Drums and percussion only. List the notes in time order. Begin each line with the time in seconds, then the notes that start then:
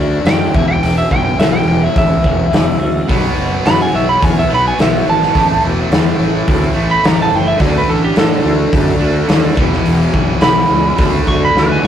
0.26 snare, open hi-hat
0.54 kick
0.83 open hi-hat
1.11 kick
1.40 snare, open hi-hat
1.96 kick, open hi-hat
2.24 kick
2.53 snare, open hi-hat
3.09 kick, open hi-hat
3.66 snare, open hi-hat
4.23 kick, open hi-hat
4.79 snare, open hi-hat
5.22 snare
5.35 kick, open hi-hat
5.92 snare, open hi-hat
6.48 kick, open hi-hat
7.04 snare, open hi-hat
7.60 kick, open hi-hat
8.16 snare, open hi-hat
8.73 kick, open hi-hat
9.29 snare, open hi-hat
9.57 kick
9.73 snare
9.86 open hi-hat
10.14 kick
10.41 snare, open hi-hat
10.98 kick, open hi-hat
11.27 kick
11.57 snare